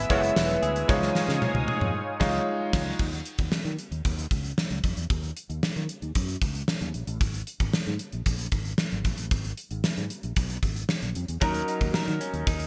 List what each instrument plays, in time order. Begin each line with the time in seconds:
Already playing: clean electric guitar E3 E4 G#4, grand piano G#3 B3 E4 B4, analog synth pad B4 E5 G#5 E6
0.10 fretless electric bass F#1, grand piano G#3 B3 E4 C#5, horn section A#3 F#4 A#4, clean electric guitar B3, kick, closed hi-hat
0.23 closed hi-hat
0.36 fretless electric bass E1, clean electric guitar E4, snare, tambourine
0.50 closed hi-hat
0.62 fretless electric bass D2, clean electric guitar G#4, closed hi-hat
0.76 closed hi-hat
0.88 fretless electric bass C#2, clean electric guitar F3, grand piano G#3 D#4 F4 C#5, analog synth pad C#5 F5 G#5 D#6, kick, snare
1.02 snare
1.15 clean electric guitar G#3, snare
1.28 fretless electric bass C#3, snare
1.41 clean electric guitar D#4, high tom
1.54 fretless electric bass C#2, high tom
1.67 clean electric guitar G#4, high tom
1.81 fretless electric bass F2, mid tom
2.20 fretless electric bass C#2, grand piano G#3 D#4 F4 C#5, kick, snare, crash
2.73 fretless electric bass C#2, kick, snare, crash
2.99 fretless electric bass D#2, kick, crash
3.13 closed hi-hat
3.25 closed hi-hat
3.38 fretless electric bass D#2, kick, closed hi-hat
3.52 snare
3.65 fretless electric bass D#3, closed hi-hat
3.79 closed hi-hat
3.91 fretless electric bass D#2, closed hi-hat
4.05 fretless electric bass D#2, kick, closed hi-hat
4.18 closed hi-hat
4.31 fretless electric bass C#2, kick, closed hi-hat
4.44 closed hi-hat
4.58 snare
4.70 fretless electric bass C#2, closed hi-hat
4.84 fretless electric bass F2, kick, closed hi-hat
4.97 fretless electric bass E2, closed hi-hat
5.10 fretless electric bass D#2, kick, closed hi-hat
5.23 closed hi-hat
5.37 closed hi-hat
5.49 fretless electric bass D#2, closed hi-hat
5.63 snare
5.76 fretless electric bass D#3, closed hi-hat
5.89 closed hi-hat
6.02 fretless electric bass D#2, closed hi-hat
6.15 fretless electric bass F#2, kick, closed hi-hat
6.29 closed hi-hat
6.42 fretless electric bass C#2, kick, closed hi-hat
6.55 closed hi-hat
6.68 snare
6.81 fretless electric bass D#2, closed hi-hat
6.94 fretless electric bass A#1, closed hi-hat
7.07 fretless electric bass A1, closed hi-hat
7.21 fretless electric bass G#1, kick, closed hi-hat
7.34 closed hi-hat
7.47 closed hi-hat
7.60 fretless electric bass G#1, kick, closed hi-hat
7.73 muted fretless electric bass stroke, snare
7.86 fretless electric bass G#2, closed hi-hat
7.99 closed hi-hat
8.13 fretless electric bass A#1, closed hi-hat
8.26 fretless electric bass A#1, kick, closed hi-hat
8.39 closed hi-hat
8.52 fretless electric bass G#1, kick, closed hi-hat
8.65 closed hi-hat
8.78 snare
8.92 fretless electric bass G#1, closed hi-hat
9.05 fretless electric bass A#1, kick, closed hi-hat
9.18 fretless electric bass A1, closed hi-hat
9.31 fretless electric bass G#1, kick, closed hi-hat
9.44 closed hi-hat
9.57 closed hi-hat
9.71 fretless electric bass G#1, closed hi-hat
9.84 snare
9.97 fretless electric bass G#2, closed hi-hat
10.10 closed hi-hat
10.23 fretless electric bass A#1, closed hi-hat
10.36 fretless electric bass B1, kick, closed hi-hat
10.50 closed hi-hat
10.62 fretless electric bass G#1, kick, closed hi-hat
10.76 closed hi-hat
10.89 snare
11.02 fretless electric bass A#1, closed hi-hat
11.15 fretless electric bass F2, closed hi-hat
11.28 fretless electric bass E2, closed hi-hat
11.41 fretless electric bass D#2, grand piano F#3 C#4 D#4 A#4, clean electric guitar F#3 A#4, kick, closed hi-hat
11.54 closed hi-hat
11.68 clean electric guitar D#4, closed hi-hat
11.81 fretless electric bass D#2, kick, closed hi-hat
11.94 clean electric guitar A#4, muted fretless electric bass stroke, snare
12.07 fretless electric bass D#3, closed hi-hat
12.21 clean electric guitar C#4, closed hi-hat
12.33 fretless electric bass D#2, closed hi-hat
12.47 fretless electric bass D#2, clean electric guitar D#4, kick, closed hi-hat
12.60 closed hi-hat